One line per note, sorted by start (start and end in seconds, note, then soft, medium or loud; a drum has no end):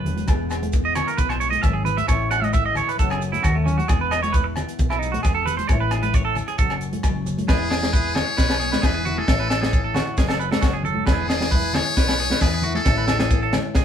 0.00 0.25 F#2 medium
0.00 0.26 F#3 medium
0.00 0.26 A3 medium
0.00 0.26 C#4 medium
0.00 0.27 F#4 medium
0.00 0.51 B4 medium
0.05 0.26 E1 medium
0.05 closed hi-hat medium
0.05 low conga medium
0.16 closed hi-hat soft
0.16 high conga medium
0.27 0.99 E1 loud
0.27 1.63 E2 medium
0.27 1.40 G#3 medium
0.27 0.72 B3 medium
0.27 2.07 G#4 medium
0.27 kick loud
0.27 cross-stick medium
0.27 closed hi-hat medium
0.27 low conga medium
0.27 low agogo medium
0.27 maracas medium
0.50 cross-stick medium
0.50 closed hi-hat medium
0.50 low agogo medium
0.50 maracas medium
0.63 closed hi-hat medium
0.63 high conga medium
0.72 2.06 E3 medium
0.72 2.09 B3 medium
0.72 kick medium
0.72 closed hi-hat medium
0.72 maracas medium
0.85 0.95 D#5 medium
0.95 1.07 C#5 loud
0.95 cross-stick medium
0.95 closed hi-hat medium
0.95 low conga medium
0.95 low agogo medium
0.95 maracas medium
1.07 1.18 A#4 medium
1.07 closed hi-hat medium
1.17 1.54 B1 loud
1.17 1.29 B4 medium
1.17 kick medium
1.17 closed hi-hat medium
1.17 maracas medium
1.29 1.40 C5 medium
1.29 cross-stick medium
1.29 low agogo medium
1.40 2.06 G#3 medium
1.40 1.50 C#5 medium
1.40 closed hi-hat medium
1.40 maracas medium
1.50 1.62 D#5 medium
1.50 closed hi-hat medium
1.50 high conga medium
1.62 1.99 G#1 loud
1.62 1.86 F#2 medium
1.62 1.74 E5 loud
1.62 kick medium
1.62 cross-stick medium
1.62 closed hi-hat soft
1.62 low agogo medium
1.62 maracas medium
1.73 1.85 G#4 medium
1.85 2.09 G#2 medium
1.85 1.97 B4 medium
1.85 closed hi-hat medium
1.85 low conga medium
1.85 maracas medium
1.97 2.08 E5 loud
1.97 closed hi-hat medium
1.97 high conga medium
2.08 2.80 A1 medium
2.08 2.99 A2 medium
2.08 2.97 A3 medium
2.08 2.53 C#4 medium
2.08 3.00 E4 medium
2.08 2.30 C#5 medium
2.08 kick medium
2.08 cross-stick medium
2.08 closed hi-hat medium
2.08 low conga medium
2.08 low agogo medium
2.08 maracas medium
2.31 2.44 F#5 loud
2.31 cross-stick medium
2.31 closed hi-hat medium
2.31 low agogo medium
2.31 maracas medium
2.42 2.53 D#5 medium
2.42 closed hi-hat soft
2.42 high conga medium
2.53 2.96 E3 medium
2.53 2.97 C#4 medium
2.53 2.65 E5 loud
2.53 kick medium
2.53 closed hi-hat medium
2.53 maracas medium
2.66 2.76 D#5 medium
2.75 2.88 C#5 loud
2.75 closed hi-hat medium
2.75 low conga medium
2.75 low agogo medium
2.75 maracas medium
2.89 2.99 B4 medium
2.89 closed hi-hat medium
2.99 3.35 F#1 loud
2.99 3.44 F#2 medium
2.99 3.87 A3 medium
2.99 3.88 C#4 medium
2.99 3.88 F#4 medium
2.99 3.11 A4 medium
2.99 kick medium
2.99 closed hi-hat soft
2.99 maracas medium
3.10 3.21 G#4 medium
3.10 cross-stick medium
3.10 low agogo medium
3.22 closed hi-hat soft
3.22 maracas medium
3.32 3.43 E4 medium
3.32 closed hi-hat soft
3.32 high conga medium
3.43 3.80 D#2 medium
3.43 3.66 G#2 medium
3.43 3.55 F#4 medium
3.43 kick medium
3.43 cross-stick medium
3.43 closed hi-hat soft
3.43 low agogo medium
3.43 maracas medium
3.55 3.66 A3 medium
3.66 3.89 F#2 medium
3.66 3.78 C#4 medium
3.66 closed hi-hat soft
3.66 low conga medium
3.66 maracas medium
3.78 3.88 F#4 medium
3.78 closed hi-hat soft
3.78 high conga medium
3.88 4.61 E1 loud
3.88 5.70 E2 medium
3.88 5.02 G#3 medium
3.88 4.34 B3 medium
3.88 4.00 G#4 medium
3.88 kick loud
3.88 cross-stick medium
3.88 closed hi-hat soft
3.88 low conga medium
3.88 low agogo medium
3.88 maracas medium
4.01 4.11 B4 medium
4.11 4.22 D#5 loud
4.11 cross-stick medium
4.11 closed hi-hat medium
4.11 low agogo medium
4.11 maracas medium
4.23 4.33 C#5 loud
4.23 closed hi-hat medium
4.23 high conga medium
4.32 5.67 E3 medium
4.32 5.23 B3 medium
4.32 4.45 B4 medium
4.32 kick medium
4.32 closed hi-hat soft
4.32 maracas medium
4.44 muted clean electric guitar stroke loud
4.56 cross-stick medium
4.56 closed hi-hat medium
4.56 low conga medium
4.56 low agogo medium
4.56 maracas medium
4.69 closed hi-hat medium
4.79 5.15 B1 loud
4.79 kick medium
4.79 closed hi-hat soft
4.79 maracas medium
4.90 5.00 E4 medium
4.90 cross-stick medium
4.90 low agogo medium
5.00 5.67 B2 medium
5.00 5.67 G#3 medium
5.00 5.12 D#4 medium
5.00 closed hi-hat medium
5.00 maracas medium
5.12 5.22 F#4 medium
5.12 closed hi-hat medium
5.12 high conga medium
5.23 5.60 E1 medium
5.23 5.69 B3 medium
5.23 5.34 G#4 medium
5.23 kick medium
5.23 cross-stick medium
5.23 closed hi-hat soft
5.23 low agogo medium
5.23 maracas loud
5.35 5.46 A4 medium
5.46 5.67 G#4 medium
5.46 5.57 B4 loud
5.46 closed hi-hat medium
5.46 low conga medium
5.46 maracas medium
5.57 5.67 C5 medium
5.57 closed hi-hat medium
5.57 high conga medium
5.67 6.40 A1 loud
5.67 6.59 A2 medium
5.67 6.57 A3 medium
5.67 6.13 C#4 medium
5.67 5.80 C#5 medium
5.67 kick medium
5.67 cross-stick medium
5.67 closed hi-hat medium
5.67 low agogo medium
5.67 maracas medium
5.72 6.60 E4 medium
5.80 5.91 B4 medium
5.91 6.03 G#4 medium
5.91 cross-stick medium
5.91 closed hi-hat medium
5.91 low agogo medium
6.03 6.14 B4 medium
6.03 closed hi-hat medium
6.03 high conga medium
6.14 6.57 E3 medium
6.14 6.57 C#4 medium
6.14 6.24 C#5 loud
6.14 kick medium
6.14 closed hi-hat medium
6.14 maracas medium
6.25 6.36 A4 medium
6.35 closed hi-hat medium
6.35 low conga medium
6.35 low agogo medium
6.35 maracas medium
6.48 6.58 G#4 medium
6.48 closed hi-hat medium
6.58 6.95 F#1 loud
6.58 7.46 F#2 medium
6.58 7.05 C#4 medium
6.58 7.47 F#4 medium
6.58 6.72 A4 medium
6.58 muted nylon-string guitar stroke medium
6.58 kick medium
6.58 closed hi-hat soft
6.58 maracas medium
6.70 cross-stick medium
6.70 low agogo medium
6.81 closed hi-hat soft
6.81 maracas medium
6.93 closed hi-hat medium
6.93 high conga medium
7.03 7.40 F#1 loud
7.03 7.47 F#3 medium
7.03 7.47 C#4 medium
7.03 kick medium
7.03 cross-stick medium
7.03 closed hi-hat soft
7.03 low agogo medium
7.03 maracas medium
7.26 closed hi-hat soft
7.26 low conga medium
7.26 maracas medium
7.38 closed hi-hat soft
7.38 high conga medium
7.47 8.20 E1 loud
7.47 8.59 E2 medium
7.47 8.60 B3 medium
7.47 7.93 E4 medium
7.47 8.18 G#4 loud
7.47 7.70 B4 medium
7.47 kick loud
7.47 snare medium
7.47 low conga medium
7.47 low agogo medium
7.47 maracas loud
7.71 7.92 G#4 medium
7.71 snare medium
7.71 low agogo medium
7.71 maracas medium
7.83 snare medium
7.83 high conga medium
7.93 9.25 G#3 medium
7.93 8.83 E4 medium
7.93 8.15 B4 medium
7.93 kick loud
7.93 maracas loud
8.15 8.37 G#4 medium
8.15 8.86 C#5 loud
8.15 snare medium
8.15 low conga medium
8.15 low agogo medium
8.15 maracas medium
8.37 8.74 B1 loud
8.37 8.48 B4 medium
8.37 kick loud
8.37 snare medium
8.37 maracas loud
8.49 8.59 B4 medium
8.49 snare medium
8.49 low agogo medium
8.60 9.28 E2 medium
8.60 9.26 B3 medium
8.60 8.72 G#4 medium
8.60 maracas medium
8.72 8.82 B4 medium
8.72 snare medium
8.72 high conga medium
8.82 9.19 E1 loud
8.82 9.05 E4 medium
8.82 8.93 G#4 medium
8.82 9.20 B4 loud
8.82 kick medium
8.82 snare medium
8.82 low agogo medium
8.82 maracas loud
8.94 9.05 G#4 medium
9.05 9.26 E4 medium
9.05 9.17 F#4 medium
9.05 low conga medium
9.05 maracas medium
9.18 9.27 G#4 medium
9.18 10.07 A4 loud
9.18 high conga medium
9.28 9.99 A1 loud
9.28 10.17 A2 medium
9.28 10.15 A3 medium
9.28 9.72 C#4 medium
9.28 10.18 E4 medium
9.28 9.39 A4 medium
9.28 kick loud
9.28 snare medium
9.28 low conga medium
9.28 low agogo medium
9.28 maracas loud
9.40 9.50 B4 medium
9.50 9.61 A4 medium
9.50 snare medium
9.50 low agogo medium
9.50 maracas medium
9.61 9.83 G#4 medium
9.61 snare medium
9.61 high conga medium
9.72 10.15 E3 medium
9.72 10.15 C#4 medium
9.72 kick loud
9.72 maracas loud
9.84 9.95 A4 medium
9.94 10.16 F#4 medium
9.94 snare medium
9.94 low conga medium
9.94 low agogo medium
9.94 maracas medium
10.17 10.53 F#1 loud
10.17 11.04 F#2 medium
10.17 11.05 A3 medium
10.17 10.61 C#4 medium
10.17 11.05 F#4 medium
10.17 10.28 G#4 medium
10.17 kick medium
10.17 snare medium
10.17 maracas medium
10.29 10.39 A4 medium
10.29 snare medium
10.29 low agogo medium
10.40 10.51 B4 medium
10.40 maracas medium
10.51 10.62 A4 medium
10.51 snare medium
10.51 high conga medium
10.61 10.98 F#1 loud
10.61 11.04 F#3 medium
10.61 11.04 C#4 medium
10.61 10.73 F#4 medium
10.61 kick loud
10.61 snare medium
10.61 low agogo medium
10.61 maracas medium
10.73 10.84 G#4 medium
10.83 11.06 A4 medium
10.83 low conga medium
10.83 maracas medium
10.95 high conga medium
11.06 11.78 E1 loud
11.06 12.18 E2 medium
11.06 12.18 B3 medium
11.06 11.53 E4 medium
11.06 11.28 B4 loud
11.06 kick loud
11.06 snare medium
11.06 low conga medium
11.06 low agogo medium
11.06 maracas medium
11.10 11.77 G#4 loud
11.29 11.50 G#4 medium
11.29 snare medium
11.29 low agogo medium
11.29 maracas medium
11.40 snare medium
11.40 high conga medium
11.51 12.84 G#3 medium
11.51 12.40 E4 medium
11.51 11.73 B4 medium
11.51 kick loud
11.51 maracas medium
11.73 11.95 G#4 medium
11.73 12.42 C#5 loud
11.73 snare medium
11.73 low conga medium
11.73 low agogo medium
11.73 maracas medium
11.97 12.32 B1 loud
11.97 12.08 B4 medium
11.97 kick medium
11.97 snare medium
11.97 maracas loud
12.08 12.19 B4 medium
12.08 snare medium
12.08 low agogo medium
12.19 12.86 E2 medium
12.19 12.84 B3 medium
12.19 12.31 G#4 medium
12.19 maracas medium
12.30 12.41 B4 medium
12.30 snare medium
12.30 high conga medium
12.41 12.76 E2 loud
12.41 12.64 E4 medium
12.41 12.53 G#4 medium
12.41 12.74 B4 loud
12.41 kick medium
12.41 snare medium
12.41 low agogo medium
12.41 maracas loud
12.54 12.63 G#4 medium
12.62 12.84 E4 medium
12.62 12.75 F#4 medium
12.62 low conga medium
12.62 maracas medium
12.75 12.84 G#4 medium
12.75 13.60 A4 medium
12.75 high conga medium
12.84 13.57 A1 medium
12.84 13.75 A2 medium
12.84 13.73 A3 medium
12.84 13.31 C#4 medium
12.84 12.96 A4 medium
12.84 kick loud
12.84 snare medium
12.84 low conga medium
12.84 low agogo medium
12.84 maracas loud
12.89 13.76 E4 medium
12.98 13.07 B4 medium
13.08 13.19 A4 medium
13.08 snare medium
13.08 low conga medium
13.08 low agogo medium
13.08 maracas loud
13.19 13.41 G#4 medium
13.19 snare medium
13.19 high conga medium
13.31 13.73 E3 medium
13.31 13.43 B3 medium
13.31 kick loud
13.31 maracas loud
13.43 13.75 C#4 medium
13.43 13.52 A4 medium
13.53 snare medium
13.53 high conga medium
13.53 low conga medium
13.53 low agogo medium
13.53 maracas medium
13.75 13.85 F#1 loud
13.75 13.85 F#2 medium
13.75 13.85 A3 medium
13.75 13.85 C#4 medium
13.75 13.85 F#4 medium
13.75 13.85 G#4 medium
13.75 kick loud
13.75 snare medium
13.75 maracas loud